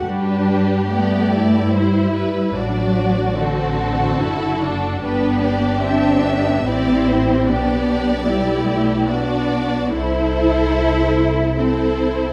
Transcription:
<<
  \new Staff \with { instrumentName = "Violin section" } { \time 3/4 \key g \major \tempo 4 = 73 b'4 d''4 c''8 b'8 | d''4 a'2 | b'8 d''8 e''4 d''8 c''8 | d''2 d''4 |
c''2 c''4 | }
  \new Staff \with { instrumentName = "Violin section" } { \time 3/4 \key g \major g'2 e'4 | fis'2. | g'2 g'4 | g'4 g'4 fis'4 |
a'2 a'4 | }
  \new Staff \with { instrumentName = "Viola section" } { \time 3/4 \key g \major d'4 b8 e'4. | d'4 c'4 e'8 d'8 | d'4 c'8 b8 e'4 | d'8 d'8 e'4 d'4 |
e'2 e'4 | }
  \new Staff \with { instrumentName = "Cello section" } { \time 3/4 \key g \major g4 a4 g4 | fis4 d4. r8 | b4 d'4 c'4 | b4 g8 a8 b4 |
e'2 c'4 | }
  \new Staff \with { instrumentName = "Double bass section" } { \clef bass \time 3/4 \key g \major g,2. | a,,2 fis,,4 | g,,2 a,,4 | b,,2. |
c,2. | }
>>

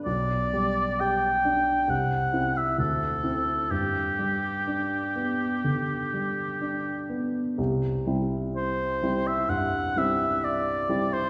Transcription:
<<
  \new Staff \with { instrumentName = "Oboe" } { \time 4/4 \key c \lydian \tempo 4 = 63 d''4 g''4 fis''8. e''16 a'4 | g'2.~ g'8 r8 | r4 c''8. e''16 fis''8 e''8 d''8. c''16 | }
  \new Staff \with { instrumentName = "Grand piano" } { \time 4/4 \key c \lydian b,,8 g8 g'8 d'8 c,8 <c' e'>8 d,8 <c' e'>8 | g,8 g8 d'8 b8 d8 g8 d'8 b8 | c,8 <g c' e'>4 <g c' e'>8 g,8 <g c' e'>4 <g c' e'>8 | }
>>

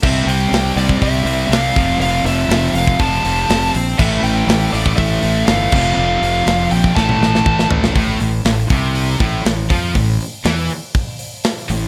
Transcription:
<<
  \new Staff \with { instrumentName = "Lead electric guitar" } { \time 4/4 \key a \minor \tempo 4 = 121 e''8 g''4 d''8 e''4 f''4 | f''8 e''4 f''8 a''4. r8 | e''8 g''4 d''8 e''4 f''4 | f''4. g''8 a''4. r8 |
r1 | r1 | }
  \new Staff \with { instrumentName = "Distorted electric guitar" } { \clef bass \time 4/4 \key a \minor <c g c'>2~ <c g c'>8 <c g c'>8 <c g c'>8 <f, c f>8~ | <f, c f>2 <f, c f>8 <f, c f>4 r8 | <a, e a>2~ <a, e a>8 <a, e a>8 <a, e a>8 <f, c f>8~ | <f, c f>2 <a, e a>2 |
a,8 a,8 a,8 c4 a,8 a,8 f8 | a,8 r8 e8 r2 a,8 | }
  \new Staff \with { instrumentName = "Distorted electric guitar" } { \clef bass \time 4/4 \key a \minor <c g c'>4. <c g c'>4. <c g c'>8 <f, c f>8~ | <f, c f>4 <f, c f>4. <f, c f>4 r8 | <a, e a>4. <a, e a>4. <a, e a>8 <f, c f>8~ | <f, c f>4 <f, c f>4 <a, e a>4. <a, e a>8 |
a,8 a,8 a,8 c4 a,8 a,8 f8 | a,8 r8 e8 r2 a,8 | }
  \new Staff \with { instrumentName = "Overdriven electric guitar" } { \clef bass \time 4/4 \key a \minor <c g c'>2.~ <c g c'>8 <f, c f>8~ | <f, c f>2.~ <f, c f>8 r8 | <a, e a>2.~ <a, e a>8 <f, c f>8~ | <f, c f>2 <a, e a>2 |
a,8 a,8 a,8 c4 a,8 a,8 f8 | a,8 r8 e8 r2 a,8 | }
  \new Staff \with { instrumentName = "Fingered electric bass" } { \clef bass \time 4/4 \key a \minor c,8 c,8 c,8 c,8 c,8 c,8 c,8 f,,8 | f,,8 f,,8 f,,8 f,,8 f,,8 f,,8 f,,8 bes,,8 | a,,8 a,,8 a,,8 a,,8 a,,8 a,,8 g,,8 f,,8 | f,,8 f,,8 f,,8 bes,,8 a,,8 a,,8 a,,8 a,,8 |
a,,8 a,,8 a,,8 c,4 a,,8 a,,8 f,8 | a,,8 r8 e,8 r2 a,,8 | }
  \new DrumStaff \with { instrumentName = "Drums" } \drummode { \time 4/4 <cymc bd>8 hho8 <hho sn>8 hho16 bd16 <hho bd>8 hho8 <hho sn>8 <hho bd>8 | hho8 hho8 <hho sn>8 hho16 bd16 <hho bd>8 hho8 <hho sn>8 hho8 | <cymc bd>8 hho8 <hho sn>8 hho16 bd16 <hho bd>8 hho8 <hho sn>8 <cymc bd>8 | r8 hho8 <hho sn>8 hho16 bd16 <bd sn>16 tommh16 sn16 sn16 bd16 sn16 tomfh16 sn16 |
<hho bd>8 hho8 <hho sn>8 <hho bd>8 hho8 <hho bd>8 <hho sn>8 <hho bd>8 | <hho bd>8 hho8 <hho sn>8 hho8 <hho bd>8 hho8 <hho sn>8 hho8 | }
>>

